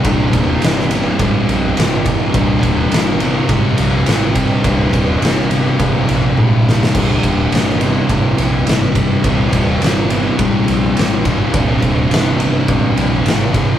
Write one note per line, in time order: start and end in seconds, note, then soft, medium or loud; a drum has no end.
0.04 0.28 C1 medium
0.04 0.92 C2 medium
0.04 0.90 G2 medium
0.04 0.90 C3 loud
0.04 kick loud
0.04 ride loud
0.33 0.57 D#1 loud
0.33 kick medium
0.33 ride medium
0.62 1.08 G1 medium
0.62 snare loud
0.62 ride medium
0.90 1.76 C2 medium
0.90 1.76 G2 medium
0.90 1.78 C3 medium
0.90 ride medium
1.19 1.43 G#1 loud
1.19 2.33 C2 medium
1.19 2.33 G2 medium
1.19 2.36 C3 medium
1.19 kick loud
1.19 ride loud
1.48 1.71 A#1 medium
1.48 ride medium
1.76 2.23 G#1 medium
1.76 2.34 C2 medium
1.76 2.33 G2 medium
1.76 2.36 C3 medium
1.76 snare loud
1.76 ride medium
2.06 kick loud
2.06 ride medium
2.34 2.58 C1 medium
2.34 3.22 C2 medium
2.34 3.20 G2 loud
2.34 3.20 C3 loud
2.34 kick loud
2.34 ride loud
2.63 2.86 D#1 loud
2.63 kick medium
2.63 ride medium
2.92 3.38 G1 medium
2.92 snare loud
2.92 ride loud
3.20 4.07 C2 medium
3.20 4.06 G2 medium
3.20 4.09 C3 medium
3.20 ride medium
3.48 3.72 G#1 loud
3.48 4.64 C2 medium
3.48 4.63 G2 medium
3.48 4.66 C3 medium
3.48 kick loud
3.48 ride loud
3.78 4.02 A#1 medium
3.78 ride medium
4.06 4.53 G#1 loud
4.06 4.63 C2 medium
4.06 4.63 G2 medium
4.06 4.65 C3 medium
4.06 snare loud
4.06 ride loud
4.35 kick loud
4.35 ride medium
4.64 4.88 C1 loud
4.64 5.52 C2 medium
4.64 5.49 G2 medium
4.64 5.50 C3 medium
4.64 kick loud
4.64 ride loud
4.93 5.16 D#1 loud
4.93 kick medium
4.93 ride medium
5.22 5.68 G1 medium
5.22 snare loud
5.22 ride medium
5.50 6.36 C2 medium
5.50 6.36 G2 medium
5.50 6.39 C3 medium
5.50 ride medium
5.79 6.03 G#1 loud
5.79 6.94 C2 medium
5.79 6.93 G2 medium
5.79 6.97 C3 medium
5.79 kick loud
5.79 ride loud
6.09 6.32 A#1 medium
6.09 ride medium
6.37 6.83 G#1 medium
6.37 6.93 C2 medium
6.37 6.93 G2 medium
6.37 6.96 C3 medium
6.37 high tom medium
6.69 snare loud
6.83 snare loud
6.94 7.18 C1 medium
6.94 7.82 C2 medium
6.94 7.79 G2 medium
6.94 7.79 C3 medium
6.94 kick loud
6.94 crash loud
7.23 7.47 D#1 loud
7.23 kick medium
7.23 ride medium
7.52 7.99 G1 medium
7.52 snare loud
7.52 ride medium
7.80 8.66 C2 medium
7.80 8.65 G2 medium
7.80 8.68 C3 medium
7.80 ride medium
8.09 8.33 G#1 loud
8.09 9.23 C2 medium
8.09 9.23 G2 medium
8.09 9.25 C3 medium
8.09 kick loud
8.09 ride loud
8.38 8.61 A#1 medium
8.38 ride medium
8.67 9.13 G#1 medium
8.67 9.23 C2 medium
8.67 9.23 G2 medium
8.67 9.25 C3 medium
8.67 snare loud
8.67 ride loud
8.95 kick loud
8.95 ride medium
9.23 9.47 C1 medium
9.23 10.12 C2 medium
9.23 10.09 G2 medium
9.23 10.10 C3 loud
9.23 kick loud
9.23 ride loud
9.53 9.76 D#1 medium
9.53 kick medium
9.53 ride medium
9.82 10.28 G1 loud
9.82 snare loud
9.82 ride loud
10.10 10.95 C2 medium
10.10 10.95 G2 medium
10.10 10.98 C3 medium
10.10 ride medium
10.38 10.62 G#1 medium
10.38 11.53 C2 medium
10.38 11.52 G2 medium
10.38 11.56 C3 medium
10.38 kick loud
10.38 ride loud
10.68 10.91 A#1 medium
10.68 ride medium
10.96 11.43 G#1 medium
10.96 11.53 C2 medium
10.96 11.53 G2 medium
10.96 11.56 C3 medium
10.96 snare loud
10.96 ride medium
11.25 kick medium
11.25 ride medium
11.53 11.77 C1 loud
11.53 12.41 C2 medium
11.53 12.39 G2 medium
11.53 12.38 C3 loud
11.53 kick loud
11.53 ride loud
11.82 12.05 D#1 medium
11.82 kick medium
11.82 ride medium
12.11 12.57 G1 medium
12.11 snare loud
12.11 ride medium
12.39 13.24 C2 medium
12.39 13.24 G2 medium
12.39 13.27 C3 medium
12.39 ride medium
12.68 12.91 G#1 medium
12.68 13.79 C2 medium
12.68 13.79 G2 medium
12.68 13.79 C3 medium
12.68 kick loud
12.68 ride medium
12.97 13.20 A#1 medium
12.97 ride medium
13.25 13.72 G#1 loud
13.25 13.79 C2 medium
13.25 13.79 G2 medium
13.25 13.79 C3 medium
13.25 snare loud
13.25 ride medium
13.54 kick loud
13.54 ride medium